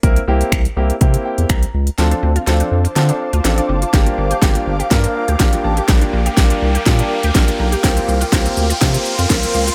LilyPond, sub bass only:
\new Staff \with { instrumentName = "Sub bass" } { \clef bass \time 4/4 \key d \minor \tempo 4 = 123 c,8 c,8 c,8 c,8 c8 r16 e,16 c,8 cis,8 | d,8 d,8 d,8 f,8 d8 r16 d,16 a,,8 fis,,8 | g,,8 g,,8 g,,8 g,,8 g,8 r16 d,16 bes,,8 a,,8 | bes,,8 bes,,8 bes,,8 c,8 bes,8 r16 d,16 bes,,8 b,,8 |
c,8 c,8 c,8 d,8 c8 r16 f,16 c,8 cis,8 | }